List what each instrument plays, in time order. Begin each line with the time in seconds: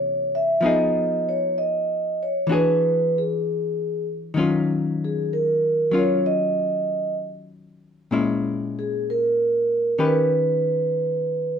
Already playing: hollow-body jazz guitar C3 E3 A#3 C#4, vibraphone C#5
0.35 vibraphone E5
0.61 hollow-body jazz guitar F3 B3 D#4
0.66 hollow-body jazz guitar G#4, vibraphone D#5
1.29 vibraphone C#5
1.58 vibraphone D#5
2.23 vibraphone C#5
2.47 hollow-body jazz guitar E3 D4 F#4
2.52 hollow-body jazz guitar G#4, vibraphone B4
3.18 vibraphone G#4
4.34 hollow-body jazz guitar D#3 F#3 C#4
4.39 hollow-body jazz guitar F4
5.04 vibraphone G#4
5.33 vibraphone A#4
5.91 hollow-body jazz guitar F#3 C#4 F4
5.98 vibraphone C#5
6.26 vibraphone D#5
8.11 hollow-body jazz guitar A#2 G#3 C#4 E4
8.79 vibraphone G#4
9.10 vibraphone A#4
9.98 hollow-body jazz guitar D#3 C#4 G4 B4, vibraphone A#4
10.05 vibraphone B4